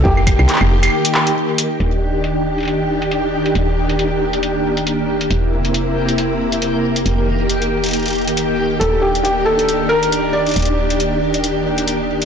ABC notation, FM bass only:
X:1
M:4/4
L:1/16
Q:"Swing 16ths" 1/4=137
K:Eb
V:1 name="FM bass" clef=bass
F,,,3 C,, z F,,,3 z8 | E,,,16 | E,,,16 | =E,,,16 |
F,,,16 | E,,,16 | E,,,16 |]